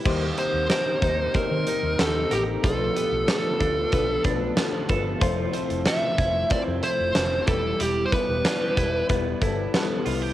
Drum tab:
CC |x---------------|----------------|----------------|----------------|
HH |--x-x-x-x-x-x-x-|x-x-x-x-x-x-x-x-|x-xxx-x-x-x-x-x-|x-x-x-x-x-x-x-o-|
SD |----o-------o---|----o-------o---|----o-------o---|----o-------o---|
BD |o-----o-o-------|o-----o-o-o---o-|o-----o-o-----o-|--o---o-o-o-----|